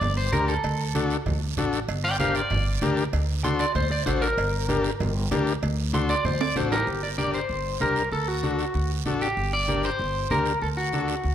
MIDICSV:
0, 0, Header, 1, 5, 480
1, 0, Start_track
1, 0, Key_signature, -2, "minor"
1, 0, Tempo, 311850
1, 987, Time_signature, 4, 2, 24, 8
1, 17468, End_track
2, 0, Start_track
2, 0, Title_t, "Clean electric guitar"
2, 0, Program_c, 0, 27
2, 0, Note_on_c, 0, 74, 98
2, 248, Note_off_c, 0, 74, 0
2, 266, Note_on_c, 0, 72, 84
2, 499, Note_off_c, 0, 72, 0
2, 500, Note_on_c, 0, 70, 73
2, 736, Note_off_c, 0, 70, 0
2, 746, Note_on_c, 0, 69, 84
2, 2142, Note_off_c, 0, 69, 0
2, 3139, Note_on_c, 0, 74, 73
2, 3147, Note_on_c, 0, 79, 78
2, 3372, Note_off_c, 0, 74, 0
2, 3377, Note_off_c, 0, 79, 0
2, 3378, Note_on_c, 0, 72, 64
2, 3390, Note_on_c, 0, 77, 73
2, 3604, Note_off_c, 0, 72, 0
2, 3627, Note_off_c, 0, 77, 0
2, 3627, Note_on_c, 0, 74, 95
2, 5021, Note_off_c, 0, 74, 0
2, 5302, Note_on_c, 0, 84, 87
2, 5535, Note_off_c, 0, 84, 0
2, 5541, Note_on_c, 0, 74, 90
2, 5774, Note_off_c, 0, 74, 0
2, 5783, Note_on_c, 0, 72, 88
2, 6015, Note_off_c, 0, 72, 0
2, 6024, Note_on_c, 0, 74, 77
2, 6244, Note_off_c, 0, 74, 0
2, 6250, Note_on_c, 0, 72, 74
2, 6488, Note_off_c, 0, 72, 0
2, 6488, Note_on_c, 0, 70, 106
2, 7889, Note_off_c, 0, 70, 0
2, 9147, Note_on_c, 0, 84, 87
2, 9375, Note_off_c, 0, 84, 0
2, 9384, Note_on_c, 0, 74, 96
2, 9622, Note_off_c, 0, 74, 0
2, 9622, Note_on_c, 0, 72, 83
2, 9852, Note_off_c, 0, 72, 0
2, 9862, Note_on_c, 0, 74, 96
2, 10092, Note_off_c, 0, 74, 0
2, 10107, Note_on_c, 0, 72, 78
2, 10335, Note_off_c, 0, 72, 0
2, 10343, Note_on_c, 0, 67, 91
2, 10344, Note_on_c, 0, 70, 96
2, 10572, Note_off_c, 0, 70, 0
2, 10787, Note_off_c, 0, 67, 0
2, 10823, Note_on_c, 0, 74, 79
2, 10900, Note_off_c, 0, 74, 0
2, 11053, Note_on_c, 0, 74, 86
2, 11278, Note_off_c, 0, 74, 0
2, 11304, Note_on_c, 0, 72, 77
2, 12022, Note_on_c, 0, 70, 74
2, 12043, Note_off_c, 0, 72, 0
2, 12468, Note_off_c, 0, 70, 0
2, 12504, Note_on_c, 0, 69, 85
2, 12744, Note_off_c, 0, 69, 0
2, 12744, Note_on_c, 0, 66, 71
2, 13704, Note_off_c, 0, 66, 0
2, 14191, Note_on_c, 0, 67, 77
2, 14673, Note_on_c, 0, 74, 88
2, 14682, Note_off_c, 0, 67, 0
2, 15116, Note_off_c, 0, 74, 0
2, 15161, Note_on_c, 0, 72, 89
2, 15868, Note_on_c, 0, 70, 82
2, 15895, Note_off_c, 0, 72, 0
2, 16314, Note_off_c, 0, 70, 0
2, 16350, Note_on_c, 0, 69, 75
2, 16427, Note_off_c, 0, 69, 0
2, 16579, Note_on_c, 0, 66, 68
2, 17468, Note_off_c, 0, 66, 0
2, 17468, End_track
3, 0, Start_track
3, 0, Title_t, "Transistor combo organ"
3, 0, Program_c, 1, 18
3, 500, Note_on_c, 1, 62, 75
3, 505, Note_on_c, 1, 67, 71
3, 509, Note_on_c, 1, 70, 85
3, 839, Note_off_c, 1, 62, 0
3, 841, Note_off_c, 1, 67, 0
3, 844, Note_off_c, 1, 70, 0
3, 1461, Note_on_c, 1, 62, 89
3, 1469, Note_on_c, 1, 66, 76
3, 1474, Note_on_c, 1, 69, 105
3, 1799, Note_off_c, 1, 62, 0
3, 1803, Note_off_c, 1, 66, 0
3, 1805, Note_off_c, 1, 69, 0
3, 2426, Note_on_c, 1, 62, 96
3, 2435, Note_on_c, 1, 66, 82
3, 2439, Note_on_c, 1, 69, 95
3, 2761, Note_off_c, 1, 62, 0
3, 2765, Note_off_c, 1, 66, 0
3, 2768, Note_off_c, 1, 69, 0
3, 3385, Note_on_c, 1, 62, 76
3, 3389, Note_on_c, 1, 67, 64
3, 3391, Note_on_c, 1, 70, 73
3, 3720, Note_off_c, 1, 62, 0
3, 3722, Note_off_c, 1, 67, 0
3, 3723, Note_off_c, 1, 70, 0
3, 4339, Note_on_c, 1, 62, 98
3, 4345, Note_on_c, 1, 67, 87
3, 4351, Note_on_c, 1, 70, 112
3, 4677, Note_off_c, 1, 62, 0
3, 4680, Note_off_c, 1, 67, 0
3, 4683, Note_off_c, 1, 70, 0
3, 5294, Note_on_c, 1, 62, 74
3, 5298, Note_on_c, 1, 66, 63
3, 5306, Note_on_c, 1, 69, 91
3, 5633, Note_off_c, 1, 62, 0
3, 5635, Note_off_c, 1, 66, 0
3, 5640, Note_off_c, 1, 69, 0
3, 6248, Note_on_c, 1, 62, 84
3, 6255, Note_on_c, 1, 66, 75
3, 6259, Note_on_c, 1, 69, 91
3, 6590, Note_off_c, 1, 62, 0
3, 6593, Note_off_c, 1, 66, 0
3, 6595, Note_off_c, 1, 69, 0
3, 7212, Note_on_c, 1, 62, 84
3, 7218, Note_on_c, 1, 67, 77
3, 7225, Note_on_c, 1, 70, 95
3, 7551, Note_off_c, 1, 62, 0
3, 7554, Note_off_c, 1, 67, 0
3, 7558, Note_off_c, 1, 70, 0
3, 8176, Note_on_c, 1, 62, 101
3, 8181, Note_on_c, 1, 67, 91
3, 8187, Note_on_c, 1, 70, 109
3, 8512, Note_off_c, 1, 62, 0
3, 8515, Note_off_c, 1, 67, 0
3, 8518, Note_off_c, 1, 70, 0
3, 9130, Note_on_c, 1, 62, 75
3, 9138, Note_on_c, 1, 66, 66
3, 9145, Note_on_c, 1, 69, 89
3, 9469, Note_off_c, 1, 62, 0
3, 9473, Note_off_c, 1, 66, 0
3, 9477, Note_off_c, 1, 69, 0
3, 10097, Note_on_c, 1, 62, 75
3, 10104, Note_on_c, 1, 66, 74
3, 10109, Note_on_c, 1, 69, 91
3, 10433, Note_off_c, 1, 62, 0
3, 10436, Note_off_c, 1, 66, 0
3, 10439, Note_off_c, 1, 69, 0
3, 11051, Note_on_c, 1, 62, 66
3, 11056, Note_on_c, 1, 67, 52
3, 11061, Note_on_c, 1, 70, 64
3, 11391, Note_off_c, 1, 62, 0
3, 11393, Note_off_c, 1, 67, 0
3, 11395, Note_off_c, 1, 70, 0
3, 12019, Note_on_c, 1, 62, 65
3, 12026, Note_on_c, 1, 67, 58
3, 12031, Note_on_c, 1, 70, 79
3, 12356, Note_off_c, 1, 62, 0
3, 12359, Note_off_c, 1, 67, 0
3, 12362, Note_off_c, 1, 70, 0
3, 12982, Note_on_c, 1, 62, 64
3, 12990, Note_on_c, 1, 66, 58
3, 12992, Note_on_c, 1, 69, 72
3, 13318, Note_off_c, 1, 62, 0
3, 13322, Note_off_c, 1, 66, 0
3, 13323, Note_off_c, 1, 69, 0
3, 13943, Note_on_c, 1, 62, 85
3, 13952, Note_on_c, 1, 66, 84
3, 13959, Note_on_c, 1, 69, 92
3, 14280, Note_off_c, 1, 62, 0
3, 14284, Note_off_c, 1, 66, 0
3, 14287, Note_off_c, 1, 69, 0
3, 14899, Note_on_c, 1, 62, 62
3, 14903, Note_on_c, 1, 67, 55
3, 14911, Note_on_c, 1, 70, 76
3, 15238, Note_off_c, 1, 62, 0
3, 15240, Note_off_c, 1, 67, 0
3, 15244, Note_off_c, 1, 70, 0
3, 15864, Note_on_c, 1, 62, 65
3, 15871, Note_on_c, 1, 67, 68
3, 15875, Note_on_c, 1, 70, 74
3, 16201, Note_off_c, 1, 62, 0
3, 16205, Note_off_c, 1, 67, 0
3, 16207, Note_off_c, 1, 70, 0
3, 16829, Note_on_c, 1, 62, 71
3, 16835, Note_on_c, 1, 66, 54
3, 16836, Note_on_c, 1, 69, 75
3, 17164, Note_off_c, 1, 62, 0
3, 17167, Note_off_c, 1, 66, 0
3, 17168, Note_off_c, 1, 69, 0
3, 17468, End_track
4, 0, Start_track
4, 0, Title_t, "Upright bass"
4, 0, Program_c, 2, 32
4, 21, Note_on_c, 2, 31, 97
4, 407, Note_off_c, 2, 31, 0
4, 498, Note_on_c, 2, 38, 94
4, 885, Note_off_c, 2, 38, 0
4, 980, Note_on_c, 2, 38, 98
4, 1750, Note_off_c, 2, 38, 0
4, 1938, Note_on_c, 2, 38, 82
4, 2325, Note_off_c, 2, 38, 0
4, 2419, Note_on_c, 2, 33, 80
4, 2805, Note_off_c, 2, 33, 0
4, 2899, Note_on_c, 2, 31, 88
4, 3668, Note_off_c, 2, 31, 0
4, 3857, Note_on_c, 2, 31, 92
4, 4243, Note_off_c, 2, 31, 0
4, 4337, Note_on_c, 2, 38, 94
4, 4723, Note_off_c, 2, 38, 0
4, 4816, Note_on_c, 2, 38, 100
4, 5585, Note_off_c, 2, 38, 0
4, 5767, Note_on_c, 2, 38, 98
4, 6156, Note_off_c, 2, 38, 0
4, 6252, Note_on_c, 2, 33, 98
4, 6639, Note_off_c, 2, 33, 0
4, 6732, Note_on_c, 2, 31, 96
4, 7502, Note_off_c, 2, 31, 0
4, 7700, Note_on_c, 2, 31, 98
4, 8083, Note_off_c, 2, 31, 0
4, 8178, Note_on_c, 2, 38, 93
4, 8561, Note_off_c, 2, 38, 0
4, 8659, Note_on_c, 2, 38, 109
4, 9426, Note_off_c, 2, 38, 0
4, 9616, Note_on_c, 2, 38, 99
4, 10000, Note_off_c, 2, 38, 0
4, 10097, Note_on_c, 2, 33, 94
4, 10481, Note_off_c, 2, 33, 0
4, 10575, Note_on_c, 2, 31, 76
4, 11345, Note_off_c, 2, 31, 0
4, 11535, Note_on_c, 2, 31, 82
4, 11921, Note_off_c, 2, 31, 0
4, 12015, Note_on_c, 2, 36, 74
4, 12401, Note_off_c, 2, 36, 0
4, 12492, Note_on_c, 2, 38, 77
4, 13264, Note_off_c, 2, 38, 0
4, 13459, Note_on_c, 2, 38, 95
4, 13845, Note_off_c, 2, 38, 0
4, 13942, Note_on_c, 2, 33, 81
4, 14327, Note_off_c, 2, 33, 0
4, 14420, Note_on_c, 2, 31, 76
4, 15191, Note_off_c, 2, 31, 0
4, 15382, Note_on_c, 2, 31, 90
4, 15768, Note_off_c, 2, 31, 0
4, 15863, Note_on_c, 2, 38, 83
4, 16249, Note_off_c, 2, 38, 0
4, 16346, Note_on_c, 2, 38, 78
4, 17115, Note_off_c, 2, 38, 0
4, 17303, Note_on_c, 2, 38, 84
4, 17468, Note_off_c, 2, 38, 0
4, 17468, End_track
5, 0, Start_track
5, 0, Title_t, "Drums"
5, 19, Note_on_c, 9, 63, 31
5, 19, Note_on_c, 9, 64, 72
5, 19, Note_on_c, 9, 74, 74
5, 31, Note_on_c, 9, 56, 76
5, 173, Note_off_c, 9, 63, 0
5, 173, Note_off_c, 9, 64, 0
5, 173, Note_off_c, 9, 74, 0
5, 185, Note_off_c, 9, 56, 0
5, 501, Note_on_c, 9, 63, 79
5, 503, Note_on_c, 9, 73, 65
5, 509, Note_on_c, 9, 56, 69
5, 655, Note_off_c, 9, 63, 0
5, 656, Note_off_c, 9, 73, 0
5, 663, Note_off_c, 9, 56, 0
5, 743, Note_on_c, 9, 73, 63
5, 896, Note_off_c, 9, 73, 0
5, 980, Note_on_c, 9, 63, 33
5, 981, Note_on_c, 9, 74, 70
5, 988, Note_on_c, 9, 56, 97
5, 1134, Note_off_c, 9, 63, 0
5, 1135, Note_off_c, 9, 74, 0
5, 1142, Note_off_c, 9, 56, 0
5, 1458, Note_on_c, 9, 63, 68
5, 1463, Note_on_c, 9, 73, 75
5, 1466, Note_on_c, 9, 56, 69
5, 1612, Note_off_c, 9, 63, 0
5, 1617, Note_off_c, 9, 73, 0
5, 1620, Note_off_c, 9, 56, 0
5, 1700, Note_on_c, 9, 73, 64
5, 1854, Note_off_c, 9, 73, 0
5, 1939, Note_on_c, 9, 63, 33
5, 1939, Note_on_c, 9, 64, 84
5, 1942, Note_on_c, 9, 74, 68
5, 1947, Note_on_c, 9, 56, 72
5, 2093, Note_off_c, 9, 63, 0
5, 2093, Note_off_c, 9, 64, 0
5, 2096, Note_off_c, 9, 74, 0
5, 2101, Note_off_c, 9, 56, 0
5, 2414, Note_on_c, 9, 63, 68
5, 2414, Note_on_c, 9, 64, 59
5, 2419, Note_on_c, 9, 73, 74
5, 2425, Note_on_c, 9, 56, 66
5, 2568, Note_off_c, 9, 63, 0
5, 2568, Note_off_c, 9, 64, 0
5, 2573, Note_off_c, 9, 73, 0
5, 2579, Note_off_c, 9, 56, 0
5, 2660, Note_on_c, 9, 73, 69
5, 2814, Note_off_c, 9, 73, 0
5, 2900, Note_on_c, 9, 63, 37
5, 2900, Note_on_c, 9, 74, 74
5, 2903, Note_on_c, 9, 56, 104
5, 3054, Note_off_c, 9, 63, 0
5, 3054, Note_off_c, 9, 74, 0
5, 3057, Note_off_c, 9, 56, 0
5, 3377, Note_on_c, 9, 63, 75
5, 3382, Note_on_c, 9, 73, 69
5, 3383, Note_on_c, 9, 56, 65
5, 3531, Note_off_c, 9, 63, 0
5, 3536, Note_off_c, 9, 73, 0
5, 3537, Note_off_c, 9, 56, 0
5, 3615, Note_on_c, 9, 73, 73
5, 3769, Note_off_c, 9, 73, 0
5, 3852, Note_on_c, 9, 74, 74
5, 3859, Note_on_c, 9, 63, 34
5, 3859, Note_on_c, 9, 64, 80
5, 3864, Note_on_c, 9, 56, 75
5, 4006, Note_off_c, 9, 74, 0
5, 4013, Note_off_c, 9, 63, 0
5, 4013, Note_off_c, 9, 64, 0
5, 4018, Note_off_c, 9, 56, 0
5, 4331, Note_on_c, 9, 73, 68
5, 4336, Note_on_c, 9, 63, 85
5, 4341, Note_on_c, 9, 56, 68
5, 4485, Note_off_c, 9, 73, 0
5, 4490, Note_off_c, 9, 63, 0
5, 4495, Note_off_c, 9, 56, 0
5, 4576, Note_on_c, 9, 73, 64
5, 4730, Note_off_c, 9, 73, 0
5, 4815, Note_on_c, 9, 63, 33
5, 4818, Note_on_c, 9, 74, 68
5, 4821, Note_on_c, 9, 56, 104
5, 4969, Note_off_c, 9, 63, 0
5, 4972, Note_off_c, 9, 74, 0
5, 4975, Note_off_c, 9, 56, 0
5, 5293, Note_on_c, 9, 73, 69
5, 5300, Note_on_c, 9, 63, 75
5, 5301, Note_on_c, 9, 56, 73
5, 5447, Note_off_c, 9, 73, 0
5, 5454, Note_off_c, 9, 63, 0
5, 5455, Note_off_c, 9, 56, 0
5, 5531, Note_on_c, 9, 73, 73
5, 5684, Note_off_c, 9, 73, 0
5, 5774, Note_on_c, 9, 74, 64
5, 5775, Note_on_c, 9, 63, 34
5, 5775, Note_on_c, 9, 64, 77
5, 5777, Note_on_c, 9, 56, 77
5, 5928, Note_off_c, 9, 74, 0
5, 5929, Note_off_c, 9, 63, 0
5, 5929, Note_off_c, 9, 64, 0
5, 5931, Note_off_c, 9, 56, 0
5, 6253, Note_on_c, 9, 73, 68
5, 6254, Note_on_c, 9, 63, 78
5, 6265, Note_on_c, 9, 56, 78
5, 6406, Note_off_c, 9, 73, 0
5, 6408, Note_off_c, 9, 63, 0
5, 6418, Note_off_c, 9, 56, 0
5, 6498, Note_on_c, 9, 73, 75
5, 6652, Note_off_c, 9, 73, 0
5, 6734, Note_on_c, 9, 63, 39
5, 6738, Note_on_c, 9, 74, 70
5, 6745, Note_on_c, 9, 56, 97
5, 6888, Note_off_c, 9, 63, 0
5, 6892, Note_off_c, 9, 74, 0
5, 6899, Note_off_c, 9, 56, 0
5, 7213, Note_on_c, 9, 63, 78
5, 7222, Note_on_c, 9, 73, 72
5, 7226, Note_on_c, 9, 56, 62
5, 7366, Note_off_c, 9, 63, 0
5, 7376, Note_off_c, 9, 73, 0
5, 7380, Note_off_c, 9, 56, 0
5, 7458, Note_on_c, 9, 73, 71
5, 7612, Note_off_c, 9, 73, 0
5, 7699, Note_on_c, 9, 74, 69
5, 7700, Note_on_c, 9, 63, 35
5, 7700, Note_on_c, 9, 64, 83
5, 7705, Note_on_c, 9, 56, 86
5, 7853, Note_off_c, 9, 74, 0
5, 7854, Note_off_c, 9, 63, 0
5, 7854, Note_off_c, 9, 64, 0
5, 7859, Note_off_c, 9, 56, 0
5, 8175, Note_on_c, 9, 63, 78
5, 8178, Note_on_c, 9, 73, 67
5, 8184, Note_on_c, 9, 56, 73
5, 8184, Note_on_c, 9, 66, 64
5, 8329, Note_off_c, 9, 63, 0
5, 8332, Note_off_c, 9, 73, 0
5, 8338, Note_off_c, 9, 56, 0
5, 8338, Note_off_c, 9, 66, 0
5, 8424, Note_on_c, 9, 73, 69
5, 8578, Note_off_c, 9, 73, 0
5, 8661, Note_on_c, 9, 74, 66
5, 8662, Note_on_c, 9, 63, 38
5, 8663, Note_on_c, 9, 56, 96
5, 8815, Note_off_c, 9, 74, 0
5, 8816, Note_off_c, 9, 63, 0
5, 8817, Note_off_c, 9, 56, 0
5, 9134, Note_on_c, 9, 63, 78
5, 9139, Note_on_c, 9, 73, 72
5, 9145, Note_on_c, 9, 56, 61
5, 9288, Note_off_c, 9, 63, 0
5, 9293, Note_off_c, 9, 73, 0
5, 9299, Note_off_c, 9, 56, 0
5, 9378, Note_on_c, 9, 73, 74
5, 9532, Note_off_c, 9, 73, 0
5, 9615, Note_on_c, 9, 63, 31
5, 9615, Note_on_c, 9, 64, 80
5, 9618, Note_on_c, 9, 74, 76
5, 9625, Note_on_c, 9, 56, 71
5, 9769, Note_off_c, 9, 63, 0
5, 9769, Note_off_c, 9, 64, 0
5, 9772, Note_off_c, 9, 74, 0
5, 9779, Note_off_c, 9, 56, 0
5, 9865, Note_on_c, 9, 65, 101
5, 10019, Note_off_c, 9, 65, 0
5, 10090, Note_on_c, 9, 63, 77
5, 10097, Note_on_c, 9, 73, 66
5, 10103, Note_on_c, 9, 56, 74
5, 10244, Note_off_c, 9, 63, 0
5, 10250, Note_off_c, 9, 73, 0
5, 10257, Note_off_c, 9, 56, 0
5, 10344, Note_on_c, 9, 73, 76
5, 10345, Note_on_c, 9, 66, 96
5, 10498, Note_off_c, 9, 73, 0
5, 10499, Note_off_c, 9, 66, 0
5, 10576, Note_on_c, 9, 63, 32
5, 10579, Note_on_c, 9, 74, 66
5, 10730, Note_off_c, 9, 63, 0
5, 10733, Note_off_c, 9, 74, 0
5, 11054, Note_on_c, 9, 63, 67
5, 11059, Note_on_c, 9, 73, 58
5, 11208, Note_off_c, 9, 63, 0
5, 11213, Note_off_c, 9, 73, 0
5, 11290, Note_on_c, 9, 73, 62
5, 11444, Note_off_c, 9, 73, 0
5, 11529, Note_on_c, 9, 74, 61
5, 11531, Note_on_c, 9, 63, 28
5, 11683, Note_off_c, 9, 74, 0
5, 11685, Note_off_c, 9, 63, 0
5, 12009, Note_on_c, 9, 63, 77
5, 12009, Note_on_c, 9, 73, 60
5, 12163, Note_off_c, 9, 63, 0
5, 12163, Note_off_c, 9, 73, 0
5, 12255, Note_on_c, 9, 73, 58
5, 12409, Note_off_c, 9, 73, 0
5, 12492, Note_on_c, 9, 63, 31
5, 12492, Note_on_c, 9, 74, 66
5, 12645, Note_off_c, 9, 74, 0
5, 12646, Note_off_c, 9, 63, 0
5, 12970, Note_on_c, 9, 63, 64
5, 12974, Note_on_c, 9, 73, 63
5, 13124, Note_off_c, 9, 63, 0
5, 13128, Note_off_c, 9, 73, 0
5, 13216, Note_on_c, 9, 73, 57
5, 13370, Note_off_c, 9, 73, 0
5, 13450, Note_on_c, 9, 63, 29
5, 13455, Note_on_c, 9, 74, 66
5, 13604, Note_off_c, 9, 63, 0
5, 13609, Note_off_c, 9, 74, 0
5, 13935, Note_on_c, 9, 63, 70
5, 13940, Note_on_c, 9, 73, 55
5, 14089, Note_off_c, 9, 63, 0
5, 14094, Note_off_c, 9, 73, 0
5, 14182, Note_on_c, 9, 73, 64
5, 14336, Note_off_c, 9, 73, 0
5, 14416, Note_on_c, 9, 63, 33
5, 14424, Note_on_c, 9, 74, 61
5, 14570, Note_off_c, 9, 63, 0
5, 14578, Note_off_c, 9, 74, 0
5, 14897, Note_on_c, 9, 73, 64
5, 14899, Note_on_c, 9, 63, 66
5, 15051, Note_off_c, 9, 73, 0
5, 15053, Note_off_c, 9, 63, 0
5, 15135, Note_on_c, 9, 73, 62
5, 15289, Note_off_c, 9, 73, 0
5, 15377, Note_on_c, 9, 74, 57
5, 15379, Note_on_c, 9, 63, 31
5, 15531, Note_off_c, 9, 74, 0
5, 15533, Note_off_c, 9, 63, 0
5, 15857, Note_on_c, 9, 73, 60
5, 15863, Note_on_c, 9, 63, 78
5, 16011, Note_off_c, 9, 73, 0
5, 16016, Note_off_c, 9, 63, 0
5, 16094, Note_on_c, 9, 73, 65
5, 16248, Note_off_c, 9, 73, 0
5, 16339, Note_on_c, 9, 74, 61
5, 16340, Note_on_c, 9, 63, 33
5, 16493, Note_off_c, 9, 63, 0
5, 16493, Note_off_c, 9, 74, 0
5, 16816, Note_on_c, 9, 73, 60
5, 16822, Note_on_c, 9, 63, 62
5, 16970, Note_off_c, 9, 73, 0
5, 16976, Note_off_c, 9, 63, 0
5, 17057, Note_on_c, 9, 73, 69
5, 17211, Note_off_c, 9, 73, 0
5, 17294, Note_on_c, 9, 74, 62
5, 17298, Note_on_c, 9, 63, 31
5, 17448, Note_off_c, 9, 74, 0
5, 17452, Note_off_c, 9, 63, 0
5, 17468, End_track
0, 0, End_of_file